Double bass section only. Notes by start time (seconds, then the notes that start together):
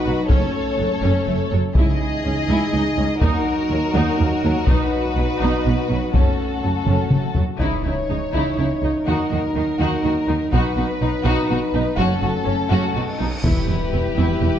0.06 B1
0.30 F#1
0.78 F#1
1.02 F#1
1.27 F#1
1.51 F#1
1.76 C#2
2.24 C#2
2.48 C#2
2.73 C#2
2.97 C#2
3.22 D#2
3.70 D#2
3.94 D#2
4.19 D#2
4.44 D#2
4.68 B1
5.16 B1
5.41 B1
5.65 B1
5.90 B1
6.14 F#1
6.63 F#1
6.87 F#1
7.12 F#1
7.36 F#1
7.60 C#2
7.84 C#2
8.09 C#2
8.33 C#2
8.57 C#2
8.82 C#2
9.06 D#2
9.31 D#2
9.55 D#2
9.79 D#2
10.04 D#2
10.28 D#2
10.52 B1
10.76 B1
11.01 B1
11.25 B1
11.49 B1
11.73 B1
11.98 F#1
12.22 F#1
12.46 F#1
12.71 F#1
12.95 B1
13.20 B1
13.44 E1
13.68 E1
13.93 E1
14.17 E1
14.41 E1